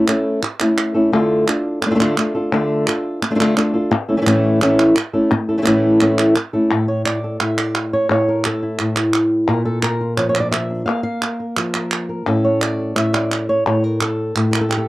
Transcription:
0.07 nylon-string guitar A3 C#4 E4 A4, clap
0.43 muted nylon-string guitar stroke, clap
0.60 nylon-string guitar A3 C#4 E4 A4, clap
0.77 clap
0.94 nylon-string guitar A3 C#4 E4 A4
1.12 nylon-string guitar D3 A3 D4 F4 A4
1.47 nylon-string guitar D4 F4 A4, clap
1.82 muted nylon-string guitar stroke, clap
1.86 nylon-string guitar A3 D4 F4 A4
1.91 nylon-string guitar A3 D4 F4 A4
1.95 nylon-string guitar A3 D4 F4 A4
2.00 nylon-string guitar D3 A3 D4 F4 A4, clap
2.17 nylon-string guitar A3 D4 F4 A4, clap
2.35 nylon-string guitar D4 F4 A4
2.52 nylon-string guitar D3 A3 D4 F4 A4
2.87 nylon-string guitar D4 F4 A4, clap
3.22 muted nylon-string guitar stroke, clap
3.31 nylon-string guitar A3 D4 F4 A4
3.35 nylon-string guitar A3 D4 F4 A4
3.40 nylon-string guitar D3 A3 D4 F4 A4, clap
3.56 nylon-string guitar A3 D4 F4 A4, clap
3.74 nylon-string guitar D4 F4 A4
3.91 muted nylon-string guitar stroke
4.08 nylon-string guitar A3 C#4 E4 A4
4.17 nylon-string guitar E3 A3 C#4 E4 A4
4.22 nylon-string guitar E3 A3 C#4 E4 A4
4.26 nylon-string guitar A2 E3 A3 C#4 E4 A4, clap
4.61 nylon-string guitar A2 E3 A3 C#4 E4 A4, clap
4.79 clap
4.96 muted nylon-string guitar stroke, clap
5.13 nylon-string guitar A3 C#4 E4 A4
5.32 muted nylon-string guitar stroke
5.49 nylon-string guitar A3 C#4 E4 A4
5.58 nylon-string guitar E3 A3 C#4 E4 A4
5.62 nylon-string guitar E3 A3 C#4 E4 A4, clap
5.67 nylon-string guitar A2 E3 A3 C#4 E4 A4
6.01 nylon-string guitar A2 E3 A3 C#4 E4 A4, clap
6.18 clap
6.36 muted nylon-string guitar stroke, clap
6.53 nylon-string guitar A3 C#4 E4 A4
6.71 nylon-string guitar A2 A4
6.88 nylon-string guitar C#5
7.05 nylon-string guitar D5, clap
7.24 nylon-string guitar A4
7.40 nylon-string guitar A2 E5, clap
7.58 nylon-string guitar D5, clap
7.75 clap
7.93 nylon-string guitar C#5
8.09 nylon-string guitar A2 C#5
8.28 nylon-string guitar A#4
8.44 nylon-string guitar A4, clap
8.63 nylon-string guitar E4
8.79 nylon-string guitar A2, clap
8.96 clap
9.14 clap
9.48 nylon-string guitar A#2 A#4
9.65 nylon-string guitar A4
9.83 nylon-string guitar A#4, clap
10.01 nylon-string guitar F4
10.17 nylon-string guitar F3 C#5, clap
10.29 nylon-string guitar C#5
10.35 nylon-string guitar D4, clap
10.40 nylon-string guitar D5
10.51 nylon-string guitar E5, clap
10.70 nylon-string guitar D4
10.86 nylon-string guitar A#3 F5
11.03 nylon-string guitar F5
11.22 nylon-string guitar A#4, clap
11.40 nylon-string guitar A#4
11.57 nylon-string guitar F3, clap
11.74 nylon-string guitar A#4, clap
11.91 clap
12.09 nylon-string guitar A#4
12.26 nylon-string guitar A2 C#4 A4
12.45 nylon-string guitar C#5
12.62 nylon-string guitar D5, clap
12.80 nylon-string guitar A4
12.96 nylon-string guitar A2 E5, clap
13.13 nylon-string guitar D5, clap
13.31 clap
13.49 nylon-string guitar C#5
13.66 nylon-string guitar A2 C#5
13.84 nylon-string guitar A#4
14.01 nylon-string guitar A4, clap
14.35 nylon-string guitar A2, clap
14.51 nylon-string guitar A#4, clap
14.61 nylon-string guitar A4
14.69 nylon-string guitar G4, clap
14.77 nylon-string guitar A4

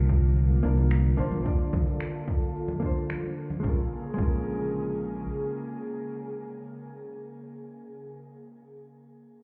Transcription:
Already playing: fingered electric bass C2, analog synth pad D3 A#3 F4, hollow-body jazz guitar A#3 D4 F4 C5
0.09 kick, high conga
0.24 cabasa
0.37 muted conga, cabasa
0.50 high conga, cabasa
0.63 fingered electric bass C2, hollow-body jazz guitar A#3 D4 F4 A#4
0.78 muted conga, cabasa
0.91 finger snap, high conga, cabasa
1.05 cabasa
1.17 fingered electric bass A#1, hollow-body jazz guitar A#3 D4 F4 C5
1.31 muted conga, high conga, cabasa
1.42 hollow-body jazz guitar A#3 D4, analog synth pad A4, kick
1.46 hollow-body jazz guitar F4 D5, cabasa
1.60 cabasa
1.73 kick, muted conga, high conga, low conga
1.87 low conga, cabasa
2.00 finger snap, cabasa
2.15 cabasa
2.28 kick, muted conga, high conga
2.42 cabasa
2.56 cabasa
2.68 muted conga, high conga, cabasa
2.80 hollow-body jazz guitar A#3 D4, kick
2.84 hollow-body jazz guitar F4 C5
2.97 cabasa
3.10 finger snap, high conga, cabasa
3.23 muted conga, cabasa
3.50 high conga, cabasa
3.60 hollow-body jazz guitar G#3 C#4, kick
3.64 fingered electric bass A#1, analog synth pad C#3 A#3 G#4, hollow-body jazz guitar F4
3.69 hollow-body jazz guitar A#4
4.14 hollow-body jazz guitar G#3 C#4
4.18 fingered electric bass A#1, hollow-body jazz guitar F4, kick
4.23 hollow-body jazz guitar A#4

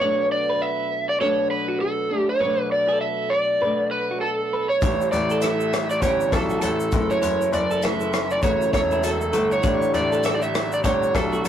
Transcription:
Already playing: electric slide guitar C#5
0.00 nylon-string guitar B2 F#3 A3, clean electric guitar D5
0.04 nylon-string guitar D4
0.32 electric slide guitar D5
0.50 clean electric guitar B4
0.62 electric slide guitar E5
1.09 electric slide guitar D5
1.20 nylon-string guitar B2 F#3 A3 D4, clean electric guitar A4, electric slide guitar C#5
1.51 electric slide guitar B4
1.68 clean electric guitar F#4
1.81 electric slide guitar A4
2.11 nylon-string guitar F#3 A3 D4
2.29 electric slide guitar C#5
2.40 nylon-string guitar B2 F#3 A3, clean electric guitar B4
2.45 nylon-string guitar D4
2.72 electric slide guitar D5
2.88 clean electric guitar A4
3.01 electric slide guitar E5
3.30 electric slide guitar D5
3.61 nylon-string guitar B2 F#3 A3, clean electric guitar B4
3.66 nylon-string guitar D4
3.91 electric slide guitar B4
4.11 clean electric guitar F#4
4.21 electric slide guitar A4, clean electric guitar A4
4.53 clean electric guitar B4
4.69 electric slide guitar C#5
4.81 grand piano A1, nylon-string guitar A2 E3 G3, clean electric guitar C#5, kick, closed hi-hat, shaker
4.86 nylon-string guitar E4
5.01 shaker
5.12 grand piano A1, electric slide guitar D5, closed hi-hat, shaker
5.30 clean electric guitar A4, shaker
5.42 electric slide guitar E5, cross-stick, closed hi-hat, shaker
5.61 shaker
5.73 cross-stick, closed hi-hat, shaker
5.90 electric slide guitar D5, shaker
6.02 grand piano G1, nylon-string guitar A2 E3 G3 C#4 E4, clean electric guitar G4, electric slide guitar C#5, kick, closed hi-hat, shaker
6.21 shaker
6.32 grand piano B1, electric slide guitar A4, kick, cross-stick, closed hi-hat, shaker
6.50 clean electric guitar F#4, shaker
6.62 grand piano A1, electric slide guitar A4, closed hi-hat, shaker
6.80 shaker
6.92 grand piano F#1, nylon-string guitar F#2 C#3 E3 A3 E4, kick, closed hi-hat, shaker
7.11 electric slide guitar C#5, shaker
7.22 grand piano F#1, clean electric guitar C#5, closed hi-hat, shaker
7.42 shaker
7.53 grand piano F#1, electric slide guitar D5, closed hi-hat, shaker
7.71 clean electric guitar A4, shaker
7.82 nylon-string guitar C#3 E3 A3 E4, electric slide guitar E5, cross-stick, closed hi-hat, shaker
8.01 shaker
8.13 cross-stick, closed hi-hat, shaker
8.31 electric slide guitar D5, shaker
8.42 grand piano A1, nylon-string guitar F#2 C#3 E3 A3 E4, clean electric guitar F#4, electric slide guitar C#5, kick, closed hi-hat, shaker
8.62 shaker
8.73 grand piano E1, electric slide guitar C#5, kick, cross-stick, closed hi-hat, shaker
8.91 clean electric guitar E4, shaker
9.04 clean electric guitar F#4, electric slide guitar A4, closed hi-hat, shaker
9.21 shaker
9.33 grand piano G1, nylon-string guitar E3 A3 E4, clean electric guitar A4, closed hi-hat, shaker
9.52 electric slide guitar C#5, shaker
9.62 grand piano A1, nylon-string guitar A2 D3 G3 D4, clean electric guitar D5, kick, closed hi-hat, shaker
9.67 nylon-string guitar E4
9.82 shaker
9.94 grand piano A1, electric slide guitar D5, closed hi-hat, shaker
10.12 clean electric guitar A4, shaker
10.23 electric slide guitar E5, cross-stick, closed hi-hat, shaker
10.35 electric slide guitar D5
10.42 electric slide guitar E5, shaker
10.55 cross-stick, closed hi-hat, shaker
10.72 electric slide guitar D5, shaker
10.84 grand piano G1, nylon-string guitar A2 D3 G3 D4 E4, clean electric guitar G4, electric slide guitar C#5, kick, closed hi-hat, shaker
11.03 shaker
11.15 grand piano B1, electric slide guitar A4, kick, cross-stick, closed hi-hat, shaker
11.33 clean electric guitar F#4, shaker
11.45 grand piano A1, closed hi-hat, shaker

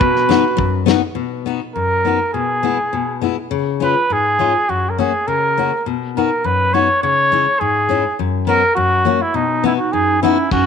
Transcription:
Already playing: clarinet F#4, trumpet B4
0.00 steel-string acoustic guitar B2, kick
0.16 snare
0.29 steel-string acoustic guitar B3 D#4 F#4, snare, hi-hat pedal
0.57 steel-string acoustic guitar F#2, kick
0.86 steel-string acoustic guitar B3 D#4 F#4, snare, hi-hat pedal
1.15 steel-string acoustic guitar B2
1.46 steel-string acoustic guitar B3 D#4 F#4
1.75 steel-string acoustic guitar F#2, trumpet A#4
2.05 steel-string acoustic guitar B3 D#4 F#4
2.34 steel-string acoustic guitar B2, trumpet G#4
2.63 steel-string acoustic guitar G#3 B3 E4
2.93 steel-string acoustic guitar B2
3.21 steel-string acoustic guitar G#3 B3 E4
3.51 steel-string acoustic guitar C#3
3.80 steel-string acoustic guitar G#3 C#4 F4, trumpet B4
4.10 steel-string acoustic guitar G#2, trumpet G#4
4.39 steel-string acoustic guitar G#3 C#4 F4
4.69 steel-string acoustic guitar F#2, trumpet F#4
4.90 trumpet A#4
4.98 steel-string acoustic guitar A#3 C#4 F#4, trumpet G#4
5.27 steel-string acoustic guitar C#3, trumpet A#4
5.58 steel-string acoustic guitar A#3 C#4 F#4
5.86 steel-string acoustic guitar B2
6.17 steel-string acoustic guitar B3 D#4 F#4, trumpet A#4
6.44 steel-string acoustic guitar F#2, trumpet B4
6.74 steel-string acoustic guitar B3 D#4 F#4, trumpet C#5
7.03 steel-string acoustic guitar C#3, trumpet C#5
7.32 steel-string acoustic guitar G#3 C#4 E4
7.60 steel-string acoustic guitar G#2, trumpet G#4
7.89 steel-string acoustic guitar G#3 C#4 E4
8.19 steel-string acoustic guitar F#2
8.47 steel-string acoustic guitar B3 C#4 F#4, trumpet A#4
8.75 steel-string acoustic guitar F#2, trumpet F#4
9.05 steel-string acoustic guitar A#3 C#4 F#4
9.21 trumpet E4
9.34 steel-string acoustic guitar B2, trumpet D#4
9.64 steel-string acoustic guitar B3 D#4 F#4, clarinet C#4, trumpet E4
9.78 clarinet D#4, trumpet F#4
9.92 steel-string acoustic guitar F#2, clarinet D#4, trumpet G#4
10.22 steel-string acoustic guitar B3 D#4 F#4, clarinet C#4, trumpet E4
10.51 steel-string acoustic guitar F#2, clarinet C#4, trumpet F#4, kick, crash

